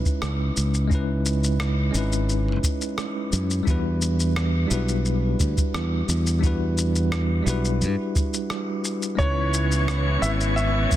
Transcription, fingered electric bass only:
0.22 0.49 C#2 medium
0.57 1.89 C#2 medium
1.95 2.58 G#1 medium
3.33 3.60 F#2 medium
3.67 4.65 E2 medium
4.71 5.34 B1 medium
5.40 5.53 D2 medium
5.74 6.01 E2 medium
6.08 7.40 E2 medium
7.46 7.83 B1 medium
7.81 7.95 G2 medium
9.19 10.16 C#2 medium
10.22 10.85 G#1 medium
10.91 10.96 B1 medium

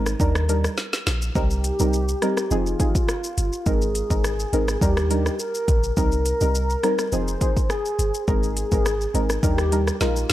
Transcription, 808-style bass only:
0.00 0.15 G#1 medium
0.20 0.67 D#2 loud
1.07 1.30 A#1 medium
1.35 1.72 C2 loud
1.80 2.15 C2 medium
2.51 2.75 F1 loud
3.38 3.50 G1 medium
3.66 4.03 G#1 medium
4.10 4.45 G#1 loud
4.53 4.77 G#1 medium
4.81 5.29 D#2 loud
5.68 5.92 A#1 loud
5.97 6.33 C2 loud
6.41 6.76 C2 loud
7.12 7.36 F1 loud
7.99 8.11 G1 medium
8.28 8.64 G#1 loud
8.72 9.07 G#1 medium
9.14 9.38 G#1 medium
9.43 9.90 D#2 loud
10.01 10.25 A#1 loud

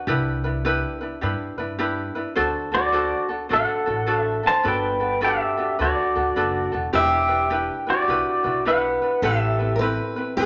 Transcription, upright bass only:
0.07 0.82 C2 loud
1.22 1.34 G2 medium
1.58 2.09 G2 medium
2.37 3.11 D2 loud
3.51 3.62 A1 medium
3.87 4.38 A1 medium
4.65 5.40 G1 loud
5.79 5.91 D2 medium
6.16 6.29 D2 medium
6.36 6.69 F#1 medium
6.74 6.92 E1 medium
6.94 7.68 E1 loud
8.08 8.20 B1 medium
8.44 8.95 B1 medium
9.22 9.97 A1 loud
10.37 10.46 E2 medium

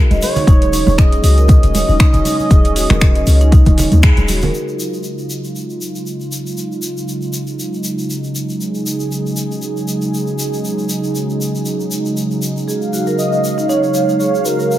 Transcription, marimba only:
0.11 0.21 D#5 medium
0.36 0.42 D#4 medium
0.47 0.55 D#4 loud
0.73 0.86 D#4 medium
0.98 1.11 G#4 medium
1.24 1.31 F#4 medium
1.38 1.49 A#4 medium
1.63 1.73 D#5 medium
1.89 1.95 D#4 medium
2.00 2.08 D#4 loud
2.25 2.38 D#4 medium
2.51 2.63 G#4 medium
2.76 2.84 F#4 medium
2.90 3.01 A#4 medium
3.16 3.26 D#5 medium
3.41 3.47 D#4 medium
3.52 3.60 D#4 loud
3.78 3.91 D#4 medium
4.03 4.16 G#4 medium
4.29 4.36 F#4 medium
4.43 4.53 A#4 medium
12.68 12.80 G#4 medium
12.93 13.01 F#4 medium
13.07 13.18 A#4 medium
13.32 13.43 D#5 medium
13.58 13.64 D#4 medium
13.69 13.77 D#4 medium
13.95 14.07 D#4 medium
14.20 14.33 G#4 medium
14.45 14.53 F#4 medium
14.59 14.70 A#4 medium

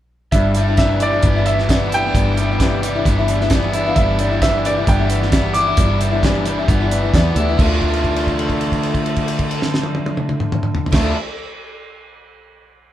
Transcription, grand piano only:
0.32 0.77 E5 medium
0.78 1.02 E5 medium
1.02 1.49 D5 medium
1.46 1.93 E5 medium
1.94 2.80 G5 loud
3.88 3.96 F5 medium
3.96 4.40 E5 medium
4.42 4.66 E5 medium
4.66 4.89 D5 medium
4.88 5.31 G5 medium
5.54 6.87 D6 loud

